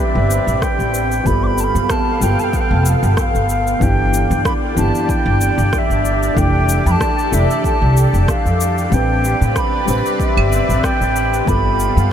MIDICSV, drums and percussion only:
0, 0, Header, 1, 2, 480
1, 0, Start_track
1, 0, Key_signature, 0, "minor"
1, 0, Tempo, 638298
1, 948, Time_signature, 4, 2, 24, 8
1, 9117, End_track
2, 0, Start_track
2, 0, Title_t, "Drums"
2, 231, Note_on_c, 9, 82, 69
2, 306, Note_off_c, 9, 82, 0
2, 362, Note_on_c, 9, 82, 31
2, 437, Note_off_c, 9, 82, 0
2, 467, Note_on_c, 9, 36, 94
2, 467, Note_on_c, 9, 37, 84
2, 470, Note_on_c, 9, 82, 38
2, 542, Note_off_c, 9, 36, 0
2, 542, Note_off_c, 9, 37, 0
2, 545, Note_off_c, 9, 82, 0
2, 602, Note_on_c, 9, 82, 27
2, 677, Note_off_c, 9, 82, 0
2, 708, Note_on_c, 9, 82, 72
2, 784, Note_off_c, 9, 82, 0
2, 840, Note_on_c, 9, 82, 31
2, 915, Note_off_c, 9, 82, 0
2, 946, Note_on_c, 9, 36, 95
2, 950, Note_on_c, 9, 82, 42
2, 1022, Note_off_c, 9, 36, 0
2, 1025, Note_off_c, 9, 82, 0
2, 1188, Note_on_c, 9, 82, 75
2, 1263, Note_off_c, 9, 82, 0
2, 1321, Note_on_c, 9, 82, 33
2, 1396, Note_off_c, 9, 82, 0
2, 1425, Note_on_c, 9, 37, 102
2, 1426, Note_on_c, 9, 36, 101
2, 1428, Note_on_c, 9, 82, 41
2, 1500, Note_off_c, 9, 37, 0
2, 1501, Note_off_c, 9, 36, 0
2, 1503, Note_off_c, 9, 82, 0
2, 1668, Note_on_c, 9, 82, 75
2, 1744, Note_off_c, 9, 82, 0
2, 1800, Note_on_c, 9, 82, 33
2, 1875, Note_off_c, 9, 82, 0
2, 1905, Note_on_c, 9, 36, 102
2, 1906, Note_on_c, 9, 82, 43
2, 1980, Note_off_c, 9, 36, 0
2, 1981, Note_off_c, 9, 82, 0
2, 2148, Note_on_c, 9, 82, 75
2, 2223, Note_off_c, 9, 82, 0
2, 2280, Note_on_c, 9, 82, 31
2, 2355, Note_off_c, 9, 82, 0
2, 2385, Note_on_c, 9, 37, 91
2, 2386, Note_on_c, 9, 36, 103
2, 2388, Note_on_c, 9, 82, 40
2, 2460, Note_off_c, 9, 37, 0
2, 2461, Note_off_c, 9, 36, 0
2, 2463, Note_off_c, 9, 82, 0
2, 2520, Note_on_c, 9, 82, 30
2, 2595, Note_off_c, 9, 82, 0
2, 2627, Note_on_c, 9, 82, 74
2, 2702, Note_off_c, 9, 82, 0
2, 2761, Note_on_c, 9, 82, 32
2, 2836, Note_off_c, 9, 82, 0
2, 2866, Note_on_c, 9, 36, 100
2, 2871, Note_on_c, 9, 82, 46
2, 2942, Note_off_c, 9, 36, 0
2, 2946, Note_off_c, 9, 82, 0
2, 3112, Note_on_c, 9, 82, 76
2, 3187, Note_off_c, 9, 82, 0
2, 3243, Note_on_c, 9, 82, 34
2, 3318, Note_off_c, 9, 82, 0
2, 3347, Note_on_c, 9, 36, 105
2, 3349, Note_on_c, 9, 37, 96
2, 3352, Note_on_c, 9, 82, 44
2, 3422, Note_off_c, 9, 36, 0
2, 3424, Note_off_c, 9, 37, 0
2, 3427, Note_off_c, 9, 82, 0
2, 3590, Note_on_c, 9, 82, 74
2, 3665, Note_off_c, 9, 82, 0
2, 3723, Note_on_c, 9, 82, 33
2, 3798, Note_off_c, 9, 82, 0
2, 3827, Note_on_c, 9, 36, 109
2, 3832, Note_on_c, 9, 82, 42
2, 3903, Note_off_c, 9, 36, 0
2, 3907, Note_off_c, 9, 82, 0
2, 4069, Note_on_c, 9, 82, 75
2, 4144, Note_off_c, 9, 82, 0
2, 4200, Note_on_c, 9, 82, 33
2, 4276, Note_off_c, 9, 82, 0
2, 4307, Note_on_c, 9, 36, 103
2, 4307, Note_on_c, 9, 37, 84
2, 4310, Note_on_c, 9, 82, 40
2, 4382, Note_off_c, 9, 37, 0
2, 4383, Note_off_c, 9, 36, 0
2, 4385, Note_off_c, 9, 82, 0
2, 4442, Note_on_c, 9, 82, 30
2, 4517, Note_off_c, 9, 82, 0
2, 4551, Note_on_c, 9, 82, 73
2, 4627, Note_off_c, 9, 82, 0
2, 4684, Note_on_c, 9, 82, 34
2, 4760, Note_off_c, 9, 82, 0
2, 4788, Note_on_c, 9, 36, 96
2, 4794, Note_on_c, 9, 82, 41
2, 4863, Note_off_c, 9, 36, 0
2, 4869, Note_off_c, 9, 82, 0
2, 5031, Note_on_c, 9, 82, 77
2, 5106, Note_off_c, 9, 82, 0
2, 5164, Note_on_c, 9, 82, 31
2, 5239, Note_off_c, 9, 82, 0
2, 5268, Note_on_c, 9, 36, 101
2, 5270, Note_on_c, 9, 37, 93
2, 5272, Note_on_c, 9, 82, 43
2, 5343, Note_off_c, 9, 36, 0
2, 5345, Note_off_c, 9, 37, 0
2, 5348, Note_off_c, 9, 82, 0
2, 5404, Note_on_c, 9, 82, 30
2, 5480, Note_off_c, 9, 82, 0
2, 5512, Note_on_c, 9, 82, 77
2, 5588, Note_off_c, 9, 82, 0
2, 5645, Note_on_c, 9, 82, 33
2, 5721, Note_off_c, 9, 82, 0
2, 5747, Note_on_c, 9, 36, 106
2, 5753, Note_on_c, 9, 82, 39
2, 5823, Note_off_c, 9, 36, 0
2, 5828, Note_off_c, 9, 82, 0
2, 5993, Note_on_c, 9, 82, 77
2, 6069, Note_off_c, 9, 82, 0
2, 6124, Note_on_c, 9, 82, 32
2, 6199, Note_off_c, 9, 82, 0
2, 6227, Note_on_c, 9, 36, 100
2, 6229, Note_on_c, 9, 37, 89
2, 6232, Note_on_c, 9, 82, 43
2, 6302, Note_off_c, 9, 36, 0
2, 6304, Note_off_c, 9, 37, 0
2, 6307, Note_off_c, 9, 82, 0
2, 6364, Note_on_c, 9, 82, 31
2, 6439, Note_off_c, 9, 82, 0
2, 6471, Note_on_c, 9, 82, 72
2, 6547, Note_off_c, 9, 82, 0
2, 6603, Note_on_c, 9, 82, 32
2, 6679, Note_off_c, 9, 82, 0
2, 6707, Note_on_c, 9, 36, 98
2, 6711, Note_on_c, 9, 82, 39
2, 6782, Note_off_c, 9, 36, 0
2, 6786, Note_off_c, 9, 82, 0
2, 6952, Note_on_c, 9, 82, 71
2, 7027, Note_off_c, 9, 82, 0
2, 7083, Note_on_c, 9, 82, 31
2, 7158, Note_off_c, 9, 82, 0
2, 7187, Note_on_c, 9, 36, 101
2, 7187, Note_on_c, 9, 37, 90
2, 7190, Note_on_c, 9, 82, 39
2, 7263, Note_off_c, 9, 36, 0
2, 7263, Note_off_c, 9, 37, 0
2, 7266, Note_off_c, 9, 82, 0
2, 7430, Note_on_c, 9, 82, 75
2, 7505, Note_off_c, 9, 82, 0
2, 7564, Note_on_c, 9, 82, 33
2, 7640, Note_off_c, 9, 82, 0
2, 7667, Note_on_c, 9, 36, 107
2, 7673, Note_on_c, 9, 82, 38
2, 7743, Note_off_c, 9, 36, 0
2, 7748, Note_off_c, 9, 82, 0
2, 7802, Note_on_c, 9, 75, 68
2, 7877, Note_off_c, 9, 75, 0
2, 7914, Note_on_c, 9, 82, 68
2, 7989, Note_off_c, 9, 82, 0
2, 8046, Note_on_c, 9, 82, 34
2, 8122, Note_off_c, 9, 82, 0
2, 8148, Note_on_c, 9, 36, 87
2, 8151, Note_on_c, 9, 37, 83
2, 8153, Note_on_c, 9, 82, 38
2, 8223, Note_off_c, 9, 36, 0
2, 8226, Note_off_c, 9, 37, 0
2, 8229, Note_off_c, 9, 82, 0
2, 8284, Note_on_c, 9, 82, 31
2, 8360, Note_off_c, 9, 82, 0
2, 8393, Note_on_c, 9, 82, 67
2, 8468, Note_off_c, 9, 82, 0
2, 8526, Note_on_c, 9, 82, 32
2, 8601, Note_off_c, 9, 82, 0
2, 8628, Note_on_c, 9, 36, 91
2, 8635, Note_on_c, 9, 82, 37
2, 8703, Note_off_c, 9, 36, 0
2, 8710, Note_off_c, 9, 82, 0
2, 8871, Note_on_c, 9, 82, 69
2, 8947, Note_off_c, 9, 82, 0
2, 9006, Note_on_c, 9, 82, 29
2, 9082, Note_off_c, 9, 82, 0
2, 9117, End_track
0, 0, End_of_file